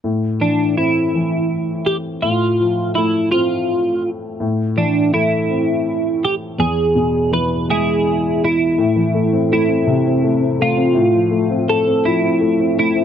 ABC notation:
X:1
M:6/8
L:1/16
Q:3/8=55
K:Am
V:1 name="Clean electric guitar"
z2 D2 E6 G2 | F4 E2 F4 z2 | z2 D2 E6 G2 | ^G4 B2 [EG]4 E2- |
E4 E6 F2- | F4 A2 E4 E2 |]
V:2 name="Upright piano"
A,,2 E,2 C2 E,6 | A,,2 F,2 A,2 C6 | A,,2 E,2 A,2 C6 | E,,2 B,,2 E,2 ^G,6 |
A,, E, A, C A, C C, C A, C A, C | A,, F, A, C A, C F, C A, C A, C |]